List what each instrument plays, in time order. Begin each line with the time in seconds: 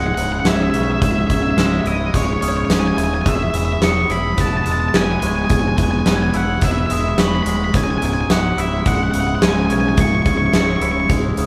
Already playing: fingered electric bass C#1, clean electric guitar C#2 G#2 G#3 E4, ambient pad E3 G#3 C#4 E5, glockenspiel E6
0.06 lead electric guitar F#5
0.15 fingered electric bass C#1, clean electric guitar C#3, lead electric guitar F#5, glockenspiel E6, closed hi-hat
0.24 lead electric guitar F#5
0.32 lead electric guitar F#5
0.40 lead electric guitar F#5
0.45 fingered electric bass C#1, clean electric guitar G#2, lead electric guitar E5, glockenspiel G#6, snare, closed hi-hat
0.55 lead electric guitar E5
0.63 lead electric guitar E5
0.70 fingered electric bass B1, lead electric guitar E5, closed hi-hat
0.75 clean electric guitar C#3, lead electric guitar E5, glockenspiel C#6
0.83 lead electric guitar E5
0.92 lead electric guitar E5
1.01 fingered electric bass C#1, clean electric guitar C#2, lead electric guitar E5, kick, closed hi-hat
1.11 lead electric guitar E5
1.19 lead electric guitar E5
1.27 fingered electric bass C#1, clean electric guitar G#2, lead electric guitar E5, glockenspiel G#6, kick, closed hi-hat
1.34 lead electric guitar E5
1.43 lead electric guitar E5
1.51 lead electric guitar E5
1.57 fingered electric bass C#1, clean electric guitar G#3, lead electric guitar E5, glockenspiel E6, snare, closed hi-hat
1.66 lead electric guitar E5
1.73 lead electric guitar E5
1.81 fingered electric bass C#1, lead electric guitar E5
1.86 clean electric guitar E4, lead electric guitar D#5, glockenspiel E6, closed hi-hat
2.14 fingered electric bass C#1, clean electric guitar G#3, lead electric guitar C#5, kick, closed hi-hat
2.25 lead electric guitar C#5
2.33 lead electric guitar C#5
2.41 fingered electric bass C#1, clean electric guitar C#3, lead electric guitar C#5, glockenspiel D#6, closed hi-hat
2.48 lead electric guitar C#5
2.57 lead electric guitar C#5
2.65 fingered electric bass C#1, lead electric guitar C#5
2.70 clean electric guitar G#2, lead electric guitar G#5, glockenspiel C#6, snare, closed hi-hat
2.80 lead electric guitar G#5
2.88 lead electric guitar G#5
2.97 fingered electric bass D#1, clean electric guitar C#3, lead electric guitar G#5, glockenspiel E6, closed hi-hat
3.04 lead electric guitar G#5
3.14 lead electric guitar G#5
3.22 fingered electric bass E1, ambient pad B3, lead electric guitar G#5
3.26 clean electric guitar E2, lead electric guitar E5, kick, closed hi-hat
3.36 lead electric guitar E5
3.43 lead electric guitar E5
3.50 fingered electric bass E1, lead electric guitar E5, closed hi-hat
3.55 clean electric guitar E3, lead electric guitar E5, glockenspiel E6
3.65 lead electric guitar E5
3.72 lead electric guitar E5
3.80 fingered electric bass E1, clean electric guitar B3, lead electric guitar C#6, glockenspiel D#6, snare, closed hi-hat
4.09 fingered electric bass E1, clean electric guitar E4, lead electric guitar B5, glockenspiel E6, closed hi-hat
4.37 fingered electric bass E1, clean electric guitar B3, lead electric guitar A5, kick, closed hi-hat
4.48 lead electric guitar A5
4.57 lead electric guitar A5
4.65 fingered electric bass E1, clean electric guitar G#3, lead electric guitar A5, glockenspiel E6, closed hi-hat
4.72 lead electric guitar A5
4.80 lead electric guitar A5
4.89 lead electric guitar A5
4.94 fingered electric bass E1, clean electric guitar E3, lead electric guitar G#5, glockenspiel G#6, snare, closed hi-hat
5.04 lead electric guitar G#5
5.12 lead electric guitar G#5
5.20 fingered electric bass C#1, clean electric guitar G#3, lead electric guitar G#5, glockenspiel C#6, closed hi-hat
5.27 lead electric guitar G#5
5.36 lead electric guitar G#5
5.44 lead electric guitar G#5
5.49 fingered electric bass E1, clean electric guitar E2, ambient pad E5, lead electric guitar G#5, kick, closed hi-hat
5.60 lead electric guitar G#5
5.68 lead electric guitar G#5
5.77 fingered electric bass E1, clean electric guitar E3, lead electric guitar G#5, glockenspiel G#6, kick, closed hi-hat
5.84 lead electric guitar G#5
5.91 lead electric guitar G#5
5.99 lead electric guitar G#5
6.06 fingered electric bass E1, clean electric guitar B3, lead electric guitar G#5, glockenspiel E6, snare, closed hi-hat
6.16 lead electric guitar G#5
6.23 lead electric guitar G#5
6.30 fingered electric bass E1, clean electric guitar E4, lead electric guitar G#5, closed hi-hat
6.35 lead electric guitar F#5, glockenspiel E6
6.61 fingered electric bass E1, clean electric guitar B3, lead electric guitar E5, kick, closed hi-hat
6.71 lead electric guitar E5
6.79 lead electric guitar E5
6.86 fingered electric bass E1, clean electric guitar G#3, lead electric guitar E5, closed hi-hat
6.91 lead electric guitar E5, glockenspiel D#6
7.01 lead electric guitar E5
7.08 lead electric guitar E5
7.17 fingered electric bass E1, clean electric guitar E3, lead electric guitar B5, glockenspiel C#6, snare, closed hi-hat
7.28 lead electric guitar B5
7.35 lead electric guitar B5
7.42 fingered electric bass D#1, clean electric guitar G#3, lead electric guitar B5, closed hi-hat
7.47 lead electric guitar B5, glockenspiel D#6
7.57 lead electric guitar B5
7.64 lead electric guitar B5
7.74 fingered electric bass C#1, clean electric guitar C#2, ambient pad E3 C#4 E5, lead electric guitar G#5, kick, closed hi-hat
7.84 lead electric guitar G#5
7.91 lead electric guitar G#5
7.98 fingered electric bass C#1, clean electric guitar G#2, lead electric guitar G#5, closed hi-hat
8.03 lead electric guitar G#5, glockenspiel E6
8.14 lead electric guitar G#5
8.21 lead electric guitar G#5
8.29 fingered electric bass C#1, clean electric guitar G#3, lead electric guitar F#5, glockenspiel D#6, snare, closed hi-hat
8.57 fingered electric bass C#1, clean electric guitar E4, lead electric guitar E5, glockenspiel E6, closed hi-hat
8.86 fingered electric bass C#1, clean electric guitar G#3, lead electric guitar F#5, kick, closed hi-hat
8.95 lead electric guitar F#5
9.03 lead electric guitar F#5
9.11 fingered electric bass C#1, clean electric guitar C#3, lead electric guitar F#5, glockenspiel E6, closed hi-hat
9.20 lead electric guitar F#5
9.27 lead electric guitar F#5
9.35 lead electric guitar F#5
9.42 fingered electric bass C#1, clean electric guitar G#2, lead electric guitar G#5, glockenspiel G#6, snare, closed hi-hat
9.50 lead electric guitar G#5
9.58 lead electric guitar G#5
9.66 fingered electric bass B1, lead electric guitar G#5
9.70 clean electric guitar C#3, lead electric guitar G#5, glockenspiel C#6, closed hi-hat
9.81 lead electric guitar G#5
9.89 lead electric guitar G#5
9.97 fingered electric bass C#1, clean electric guitar C#2, lead electric guitar C#6, kick, closed hi-hat
10.08 lead electric guitar C#6
10.15 lead electric guitar C#6
10.22 fingered electric bass C#1, clean electric guitar G#2, lead electric guitar C#6, kick, closed hi-hat
10.27 glockenspiel G#6
10.31 lead electric guitar C#6
10.37 lead electric guitar C#6
10.46 lead electric guitar C#6
10.53 fingered electric bass C#1, clean electric guitar G#3, lead electric guitar C#6, glockenspiel E6, snare, closed hi-hat
10.61 lead electric guitar C#6
10.69 lead electric guitar C#6
10.76 lead electric guitar C#6
10.81 fingered electric bass C#1, clean electric guitar E4, glockenspiel E6, closed hi-hat
10.85 lead electric guitar C#6
10.91 lead electric guitar C#6
11.00 lead electric guitar C#6
11.09 fingered electric bass C#1, clean electric guitar G#3, kick, closed hi-hat
11.37 fingered electric bass C#1, clean electric guitar C#3, glockenspiel D#6, closed hi-hat